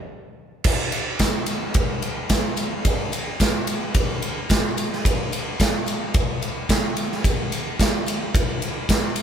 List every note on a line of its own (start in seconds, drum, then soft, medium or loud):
0.64 kick loud
0.64 crash loud
0.64 tambourine medium
0.92 ride medium
0.92 tambourine medium
1.19 kick medium
1.19 snare loud
1.19 ride loud
1.19 tambourine medium
1.46 ride medium
1.46 tambourine medium
1.74 kick loud
1.74 ride loud
2.02 ride medium
2.02 tambourine soft
2.29 kick medium
2.29 snare loud
2.29 ride loud
2.29 tambourine medium
2.56 ride medium
2.56 tambourine medium
2.85 kick loud
2.85 ride loud
2.85 tambourine medium
3.12 ride medium
3.12 tambourine medium
3.40 kick medium
3.40 snare loud
3.40 ride loud
3.40 tambourine medium
3.67 ride medium
3.67 tambourine medium
3.94 kick loud
3.94 ride loud
4.22 ride medium
4.22 tambourine soft
4.49 kick medium
4.49 snare loud
4.49 ride loud
4.49 tambourine medium
4.77 ride medium
4.77 tambourine medium
4.93 snare soft
5.05 kick loud
5.05 ride loud
5.05 tambourine medium
5.32 ride medium
5.32 tambourine medium
5.60 kick medium
5.60 snare loud
5.60 ride loud
5.60 tambourine medium
5.86 ride medium
5.86 tambourine medium
6.14 kick loud
6.14 ride medium
6.42 ride medium
6.42 tambourine soft
6.69 kick medium
6.69 snare loud
6.69 ride loud
6.69 tambourine medium
6.97 ride medium
6.97 tambourine medium
7.12 snare soft
7.24 kick loud
7.24 ride loud
7.24 tambourine medium
7.52 ride medium
7.52 tambourine medium
7.79 kick medium
7.79 snare loud
7.79 ride loud
7.79 tambourine medium
8.06 ride medium
8.06 tambourine medium
8.35 kick loud
8.35 ride loud
8.35 tambourine soft
8.62 ride medium
8.89 kick medium
8.89 snare loud
8.89 ride loud
8.89 tambourine medium
9.16 ride medium
9.16 tambourine medium